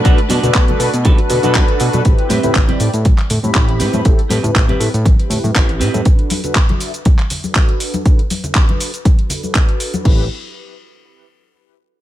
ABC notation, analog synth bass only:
X:1
M:4/4
L:1/16
Q:"Swing 16ths" 1/4=120
K:Ador
V:1 name="Analog synth bass" clef=bass
B,,, z B,, B,, B,,, z B,, B,, B,,, z B,, B,, B,,, z B,, B,, | A,,, z A,, A,, A,,, z A,, A,, A,,, z A,, A,, A,,,2 A,, A,, | A,,, z A,, A,, A,,, z A,, A,, A,,, z A,, A,, A,,,2 A,, A,, | z16 |
z16 | A,,,2 z12 z2 |]